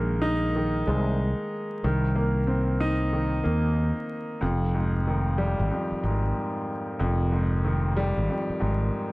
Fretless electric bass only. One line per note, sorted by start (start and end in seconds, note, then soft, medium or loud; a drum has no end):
0.00 0.83 A#1 loud
0.88 1.32 C2 loud
1.84 3.41 C2 loud
3.45 3.90 D#2 medium
4.42 5.55 F1 loud
5.59 5.69 G#1 medium
5.92 muted fretless electric bass stroke soft
6.03 6.31 G#1 medium
7.00 8.13 F1 loud
8.17 8.27 G#1 medium
8.49 muted fretless electric bass stroke soft
8.62 8.89 G#1 medium